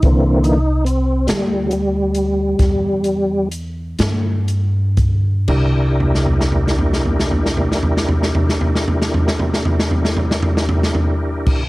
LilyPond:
<<
  \new Staff \with { instrumentName = "Tonewheel organ" } { \time 12/8 \key c \mixolydian \tempo 4. = 39 <d e bes c'>8 ees'8 c'8 g8 <fis g>2 r2 | <d' e' g' bes'>1. | }
  \new Staff \with { instrumentName = "Upright bass" } { \clef bass \time 12/8 \key c \mixolydian c,4. d,4. e,4. g,4. | c,1. | }
  \new DrumStaff \with { instrumentName = "Drums" } \drummode { \time 12/8 <hh bd>8 hh8 hh8 <hh sn>8 hh8 hh8 <hh bd sn>8 hh8 hh8 <hh sn>8 hh8 <hh bd>8 | <cymc bd>8 tomfh32 sn32 tomfh32 sn32 tomfh32 sn32 tomfh32 sn32 tomfh32 sn32 tomfh32 sn32 tomfh32 sn32 tomfh32 sn32 tomfh32 sn32 tomfh32 sn32 tomfh32 sn32 tomfh32 sn32 tomfh32 sn32 tomfh32 sn32 tomfh32 sn32 tomfh32 sn32 tomfh32 sn32 tomfh32 sn32 tomfh32 sn32 tomfh8 <cymc bd>16 | }
>>